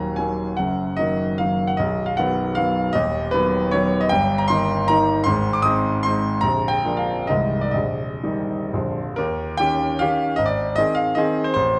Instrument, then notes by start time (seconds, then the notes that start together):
grand piano
Already playing: D#1 D#2 D#3 F#3 A#3 F#5 G#5 A#5
0.16 D#3 F#3 A#3 G#5
0.57 F#1 F#2 F#5
0.97 D#3 F#3 A#3 D#5
1.38 D#3 F#3 A#3 F5
1.67 F#5
1.77 B0 B1 D#5
2.06 F5
2.17 D#3 F#3 B3 F#5
2.55 D#3 F#3 B3 F5
2.93 D#1 D#2 D#5
3.31 D#3 F#3 B3 B4
3.71 D#3 F#3 B3 C#5
4.01 D#5
4.09 G1 G2 G5
4.38 A#5
4.48 D#3 A#3 D#4 C6
4.88 D#3 A#3 D#4 A#5
5.24 G#1 G#2 C6
5.53 D6
5.62 G#3 C4 D#4 D#6
6.03 G#3 C4 D#4 C6
6.41 A#0 A#1 A#5
6.68 G5
6.85 F3 A#3 D4
6.97 F5
7.27 C1 C2 D#3 G#3 D#4 D#5
7.61 D5
7.71 A#0 A#1 D#5
8.23 D#3 G3 D#4
8.73 A#0 A#1 D3 F3 F4
9.16 D#2 A#4
9.57 D#3 C#4 G4 G5
9.99 D#3 C#4 G4 F5
10.36 G#1 D#5
10.46 D5
10.76 D#3 C4 G#4 D#5
10.95 F5
11.15 D#3 C4 G#4 D#5
11.44 C5
11.54 A1 C5